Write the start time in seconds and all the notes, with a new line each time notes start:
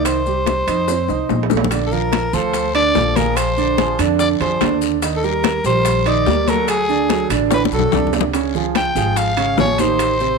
Already playing: C2 D#3 D#4
0.05 C5, high bongo, high conga, high timbale, maracas
0.26 G3 G4, high bongo, high conga, maracas
0.46 high bongo, high conga, high timbale, low timbale, maracas
0.67 F2 D#4 D#5, high conga, high timbale, maracas
0.88 C4 C5, high bongo, high conga, high timbale, maracas
1.08 C2 D#4 D#5, low bongo, high conga, maracas
1.29 A#1, low bongo, high conga, low timbale, maracas
1.43 low timbale
1.50 A3 A4, low bongo, high conga, maracas
1.57 low timbale
1.64 low conga
1.71 D3 D4 D5, high bongo, high conga, high timbale, long guiro, maracas
1.86 A4
1.92 F3 F4 A#4, high bongo, high conga, maracas
2.12 high bongo, high conga, high timbale, low timbale, short guiro, maracas
2.33 D2 F3 F4 A4 C5, high bongo, high conga, short guiro, maracas
2.53 high bongo, high conga, high timbale, long guiro, maracas
2.74 D3 D4 D5, high bongo, high conga, high timbale, maracas
2.95 A#1 F3 F4 A4, high bongo, low bongo, high conga, low timbale, short guiro, maracas
3.16 F3 F4 G#4 A#4, high conga, high timbale, short guiro, maracas
3.36 C5, high bongo, high conga, high timbale, long guiro, maracas
3.57 D3 D4 D5, high bongo, high conga, maracas
3.78 F3 F4 G#4, high bongo, high conga, high timbale, low timbale, short guiro, maracas
3.99 F2 D3 D4 D5, high conga, high timbale, short guiro, maracas
4.19 D5, high bongo, high conga, long guiro, maracas
4.40 F2 F3 F4 G#4 C5, high bongo, high conga, high timbale, maracas
4.61 D#2 D3 D4 D5, high bongo, low bongo, high conga, high timbale, low timbale, short guiro, maracas
4.81 high bongo, short guiro, maracas
5.02 D#3 D#4 D#5, high bongo, high conga, high timbale, long guiro, maracas
5.17 A4
5.23 G3 G4 A#4, high bongo, high conga, maracas
5.43 high bongo, high conga, high timbale, low timbale, short guiro, maracas
5.64 A#1 G3 G4 A#4 C5, high bongo, high conga, short guiro, maracas
5.85 high bongo, high conga, high timbale, long guiro, maracas
6.06 D#3 D#4 D5 D#5, high bongo, high conga, high timbale, maracas
6.26 D2 G3 G4 A#4, high bongo, low bongo, high conga, low timbale, short guiro, maracas
6.48 F#3 F#4 A4 A#4, high conga, high timbale, short guiro, maracas
6.68 G#4, high bongo, high conga, high timbale, long guiro, maracas
6.89 D3 D4 D5, high bongo, high conga, maracas
7.09 F#3 F#4 A4, high bongo, high conga, high timbale, low timbale, short guiro, maracas
7.30 A1 D3 D4 D5, high conga, high timbale, short guiro, maracas
7.51 B4, high bongo, high conga, high timbale, long guiro, maracas
7.65 high conga
7.71 B1 F#3 F#4 A4, high bongo, maracas
7.79 low conga
7.92 C#2 C3 D4 D5, high bongo, low bongo, low conga, short guiro, maracas
8.07 low conga
8.13 high bongo, low timbale, short guiro, maracas
8.21 low conga
8.33 C#3 C#4 C#5, high bongo, high conga, high timbale, long guiro, maracas
8.55 F3 F4 G#4, high bongo, high conga, maracas
8.75 G5, high bongo, high conga, high timbale, low timbale, short guiro, maracas
8.95 G#1 F3 F4 G#4, high bongo, high conga, short guiro, maracas
9.16 F5, high bongo, high conga, high timbale, long guiro, maracas
9.37 C#3 C#4 C#5, high bongo, high conga, high timbale, maracas
9.57 A1 F3 F4 G#4 C#5, high bongo, low bongo, high conga, low timbale, short guiro, maracas
9.78 D#3 D#4 G4 C5, high conga, high timbale, short guiro, maracas
9.99 high bongo, high conga, high timbale, long guiro, maracas
10.20 C3 C4 C5, high bongo, high conga, maracas